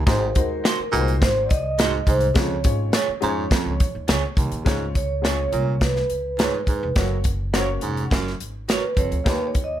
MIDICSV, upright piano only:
0, 0, Header, 1, 2, 480
1, 0, Start_track
1, 0, Key_signature, -5, "major"
1, 0, Tempo, 574713
1, 58, Time_signature, 4, 2, 24, 8
1, 8185, End_track
2, 0, Start_track
2, 0, Title_t, "Upright piano"
2, 0, Program_c, 0, 0
2, 52, Note_on_c, 0, 56, 78
2, 56, Note_on_c, 0, 63, 76
2, 63, Note_on_c, 0, 66, 71
2, 65, Note_on_c, 0, 72, 81
2, 178, Note_off_c, 0, 56, 0
2, 180, Note_off_c, 0, 63, 0
2, 184, Note_off_c, 0, 66, 0
2, 185, Note_off_c, 0, 72, 0
2, 295, Note_on_c, 0, 56, 76
2, 296, Note_on_c, 0, 63, 69
2, 300, Note_on_c, 0, 66, 68
2, 307, Note_on_c, 0, 72, 75
2, 542, Note_off_c, 0, 56, 0
2, 543, Note_off_c, 0, 63, 0
2, 545, Note_off_c, 0, 66, 0
2, 549, Note_off_c, 0, 72, 0
2, 772, Note_on_c, 0, 56, 79
2, 775, Note_on_c, 0, 63, 72
2, 781, Note_on_c, 0, 71, 63
2, 783, Note_on_c, 0, 66, 71
2, 833, Note_off_c, 0, 71, 0
2, 837, Note_on_c, 0, 72, 86
2, 1267, Note_off_c, 0, 56, 0
2, 1268, Note_off_c, 0, 63, 0
2, 1272, Note_off_c, 0, 66, 0
2, 1299, Note_off_c, 0, 72, 0
2, 1957, Note_on_c, 0, 56, 86
2, 1963, Note_on_c, 0, 61, 75
2, 1971, Note_on_c, 0, 65, 76
2, 1971, Note_on_c, 0, 73, 81
2, 2089, Note_off_c, 0, 56, 0
2, 2092, Note_off_c, 0, 61, 0
2, 2096, Note_off_c, 0, 65, 0
2, 2096, Note_off_c, 0, 73, 0
2, 2205, Note_on_c, 0, 56, 65
2, 2210, Note_on_c, 0, 61, 70
2, 2212, Note_on_c, 0, 65, 63
2, 2220, Note_on_c, 0, 73, 77
2, 2456, Note_off_c, 0, 56, 0
2, 2458, Note_off_c, 0, 61, 0
2, 2459, Note_off_c, 0, 65, 0
2, 2463, Note_off_c, 0, 73, 0
2, 2678, Note_on_c, 0, 56, 82
2, 2678, Note_on_c, 0, 61, 80
2, 2685, Note_on_c, 0, 65, 70
2, 2689, Note_on_c, 0, 72, 76
2, 2744, Note_on_c, 0, 73, 96
2, 2745, Note_off_c, 0, 72, 0
2, 3178, Note_off_c, 0, 61, 0
2, 3179, Note_off_c, 0, 56, 0
2, 3182, Note_off_c, 0, 65, 0
2, 3212, Note_off_c, 0, 73, 0
2, 3880, Note_on_c, 0, 56, 80
2, 3885, Note_on_c, 0, 61, 76
2, 3891, Note_on_c, 0, 65, 74
2, 3900, Note_on_c, 0, 73, 99
2, 4133, Note_off_c, 0, 56, 0
2, 4136, Note_off_c, 0, 61, 0
2, 4139, Note_off_c, 0, 65, 0
2, 4143, Note_off_c, 0, 73, 0
2, 4357, Note_on_c, 0, 56, 70
2, 4362, Note_on_c, 0, 61, 64
2, 4364, Note_on_c, 0, 65, 65
2, 4373, Note_on_c, 0, 73, 78
2, 4859, Note_off_c, 0, 56, 0
2, 4862, Note_off_c, 0, 61, 0
2, 4862, Note_off_c, 0, 65, 0
2, 4867, Note_off_c, 0, 73, 0
2, 5810, Note_on_c, 0, 58, 73
2, 5814, Note_on_c, 0, 61, 60
2, 5818, Note_on_c, 0, 66, 66
2, 5823, Note_on_c, 0, 73, 80
2, 6060, Note_off_c, 0, 58, 0
2, 6062, Note_off_c, 0, 61, 0
2, 6064, Note_off_c, 0, 66, 0
2, 6067, Note_off_c, 0, 73, 0
2, 6292, Note_on_c, 0, 58, 85
2, 6298, Note_on_c, 0, 61, 81
2, 6299, Note_on_c, 0, 66, 79
2, 6308, Note_on_c, 0, 72, 77
2, 6357, Note_off_c, 0, 72, 0
2, 6357, Note_on_c, 0, 73, 95
2, 6789, Note_off_c, 0, 58, 0
2, 6792, Note_off_c, 0, 61, 0
2, 6792, Note_off_c, 0, 66, 0
2, 6821, Note_off_c, 0, 73, 0
2, 7718, Note_on_c, 0, 58, 74
2, 7723, Note_on_c, 0, 63, 65
2, 7729, Note_on_c, 0, 73, 77
2, 7730, Note_on_c, 0, 67, 68
2, 7976, Note_off_c, 0, 58, 0
2, 7979, Note_off_c, 0, 63, 0
2, 7982, Note_off_c, 0, 67, 0
2, 7982, Note_off_c, 0, 73, 0
2, 8185, End_track
0, 0, End_of_file